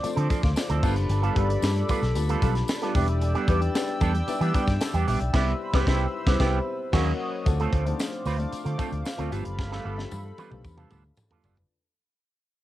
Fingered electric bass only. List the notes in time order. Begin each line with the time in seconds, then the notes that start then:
0.04 muted fingered electric bass stroke
0.17 D3
0.43 D2
0.70 D2
0.83 G1
0.97 F#1
1.09 G1
1.36 G1
1.63 G2
2.02 B1
2.15 D2
2.42 B1
2.95 E1
3.48 E2
4.01 E2
4.41 E3
4.68 G2
4.94 E2
5.07 A#1
5.21 B1
5.34 C2
5.73 C2
5.87 C2
6.26 C2
6.40 C2
6.93 D#2
7.46 D2
7.73 D2
8.26 D2
8.53 muted fingered electric bass stroke
8.65 D3
8.92 D2
9.19 D2
9.32 G1
9.46 F#1
9.59 G1
9.85 G1
10.12 G2
10.51 B1
10.65 E2
10.91 D2
11.44 F#1